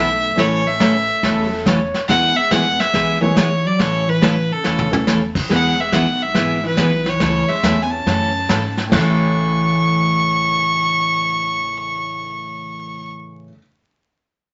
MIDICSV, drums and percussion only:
0, 0, Header, 1, 2, 480
1, 0, Start_track
1, 0, Key_signature, 3, "major"
1, 0, Tempo, 427960
1, 427, Time_signature, 4, 2, 24, 8
1, 16302, End_track
2, 0, Start_track
2, 0, Title_t, "Drums"
2, 421, Note_on_c, 9, 25, 53
2, 421, Note_on_c, 9, 38, 48
2, 422, Note_on_c, 9, 36, 21
2, 533, Note_off_c, 9, 38, 0
2, 534, Note_off_c, 9, 36, 0
2, 899, Note_on_c, 9, 38, 66
2, 899, Note_on_c, 9, 44, 57
2, 901, Note_on_c, 9, 36, 23
2, 1011, Note_off_c, 9, 38, 0
2, 1011, Note_off_c, 9, 44, 0
2, 1013, Note_off_c, 9, 36, 0
2, 1381, Note_on_c, 9, 36, 29
2, 1383, Note_off_c, 9, 25, 0
2, 1383, Note_on_c, 9, 25, 57
2, 1383, Note_on_c, 9, 38, 48
2, 1493, Note_off_c, 9, 36, 0
2, 1495, Note_off_c, 9, 38, 0
2, 1860, Note_on_c, 9, 36, 28
2, 1864, Note_on_c, 9, 38, 66
2, 1864, Note_on_c, 9, 44, 56
2, 1973, Note_off_c, 9, 36, 0
2, 1976, Note_off_c, 9, 38, 0
2, 1976, Note_off_c, 9, 44, 0
2, 2178, Note_on_c, 9, 38, 42
2, 2291, Note_off_c, 9, 38, 0
2, 2341, Note_on_c, 9, 36, 28
2, 2348, Note_off_c, 9, 25, 0
2, 2348, Note_on_c, 9, 25, 49
2, 2348, Note_on_c, 9, 38, 49
2, 2454, Note_off_c, 9, 36, 0
2, 2460, Note_off_c, 9, 38, 0
2, 2817, Note_on_c, 9, 38, 63
2, 2817, Note_on_c, 9, 44, 65
2, 2818, Note_on_c, 9, 36, 27
2, 2930, Note_off_c, 9, 36, 0
2, 2930, Note_off_c, 9, 38, 0
2, 2930, Note_off_c, 9, 44, 0
2, 3136, Note_on_c, 9, 38, 44
2, 3248, Note_off_c, 9, 38, 0
2, 3293, Note_off_c, 9, 25, 0
2, 3293, Note_on_c, 9, 25, 49
2, 3293, Note_on_c, 9, 38, 51
2, 3296, Note_on_c, 9, 36, 25
2, 3405, Note_off_c, 9, 38, 0
2, 3408, Note_off_c, 9, 36, 0
2, 3775, Note_on_c, 9, 36, 23
2, 3775, Note_on_c, 9, 38, 64
2, 3775, Note_on_c, 9, 44, 67
2, 3887, Note_off_c, 9, 36, 0
2, 3887, Note_off_c, 9, 38, 0
2, 3887, Note_off_c, 9, 44, 0
2, 4254, Note_off_c, 9, 25, 0
2, 4254, Note_on_c, 9, 25, 47
2, 4254, Note_on_c, 9, 36, 20
2, 4254, Note_on_c, 9, 38, 47
2, 4367, Note_off_c, 9, 36, 0
2, 4367, Note_off_c, 9, 38, 0
2, 4732, Note_on_c, 9, 36, 24
2, 4733, Note_on_c, 9, 38, 68
2, 4733, Note_on_c, 9, 44, 60
2, 4844, Note_off_c, 9, 36, 0
2, 4846, Note_off_c, 9, 38, 0
2, 4846, Note_off_c, 9, 44, 0
2, 5206, Note_on_c, 9, 38, 53
2, 5318, Note_off_c, 9, 38, 0
2, 5368, Note_on_c, 9, 47, 59
2, 5480, Note_off_c, 9, 47, 0
2, 5529, Note_on_c, 9, 47, 80
2, 5642, Note_off_c, 9, 47, 0
2, 5689, Note_on_c, 9, 38, 59
2, 5689, Note_on_c, 9, 44, 64
2, 5801, Note_off_c, 9, 38, 0
2, 5801, Note_off_c, 9, 44, 0
2, 6003, Note_on_c, 9, 36, 76
2, 6004, Note_on_c, 9, 49, 81
2, 6116, Note_off_c, 9, 36, 0
2, 6116, Note_off_c, 9, 49, 0
2, 6167, Note_on_c, 9, 36, 24
2, 6169, Note_off_c, 9, 25, 0
2, 6169, Note_on_c, 9, 25, 52
2, 6169, Note_on_c, 9, 38, 45
2, 6279, Note_off_c, 9, 36, 0
2, 6281, Note_off_c, 9, 38, 0
2, 6642, Note_on_c, 9, 36, 25
2, 6643, Note_on_c, 9, 38, 76
2, 6643, Note_on_c, 9, 44, 65
2, 6755, Note_off_c, 9, 36, 0
2, 6755, Note_off_c, 9, 38, 0
2, 6755, Note_off_c, 9, 44, 0
2, 7117, Note_off_c, 9, 25, 0
2, 7117, Note_on_c, 9, 25, 55
2, 7117, Note_on_c, 9, 38, 45
2, 7119, Note_on_c, 9, 36, 26
2, 7229, Note_off_c, 9, 38, 0
2, 7231, Note_off_c, 9, 36, 0
2, 7594, Note_on_c, 9, 38, 69
2, 7594, Note_on_c, 9, 44, 53
2, 7598, Note_on_c, 9, 36, 26
2, 7706, Note_off_c, 9, 38, 0
2, 7706, Note_off_c, 9, 44, 0
2, 7710, Note_off_c, 9, 36, 0
2, 7916, Note_on_c, 9, 38, 42
2, 8028, Note_off_c, 9, 38, 0
2, 8076, Note_off_c, 9, 25, 0
2, 8076, Note_on_c, 9, 25, 45
2, 8076, Note_on_c, 9, 38, 46
2, 8078, Note_on_c, 9, 36, 25
2, 8188, Note_off_c, 9, 38, 0
2, 8190, Note_off_c, 9, 36, 0
2, 8561, Note_on_c, 9, 36, 27
2, 8563, Note_on_c, 9, 38, 70
2, 8563, Note_on_c, 9, 44, 55
2, 8673, Note_off_c, 9, 36, 0
2, 8675, Note_off_c, 9, 38, 0
2, 8675, Note_off_c, 9, 44, 0
2, 9045, Note_on_c, 9, 36, 24
2, 9049, Note_off_c, 9, 25, 0
2, 9049, Note_on_c, 9, 25, 52
2, 9049, Note_on_c, 9, 38, 47
2, 9157, Note_off_c, 9, 36, 0
2, 9161, Note_off_c, 9, 38, 0
2, 9525, Note_on_c, 9, 36, 19
2, 9525, Note_on_c, 9, 38, 72
2, 9525, Note_on_c, 9, 44, 56
2, 9637, Note_off_c, 9, 36, 0
2, 9637, Note_off_c, 9, 38, 0
2, 9637, Note_off_c, 9, 44, 0
2, 9841, Note_on_c, 9, 38, 41
2, 9953, Note_off_c, 9, 38, 0
2, 10003, Note_on_c, 9, 38, 93
2, 10003, Note_on_c, 9, 57, 84
2, 10007, Note_on_c, 9, 36, 97
2, 10115, Note_off_c, 9, 38, 0
2, 10115, Note_off_c, 9, 57, 0
2, 10119, Note_off_c, 9, 36, 0
2, 10395, Note_off_c, 9, 25, 0
2, 16302, End_track
0, 0, End_of_file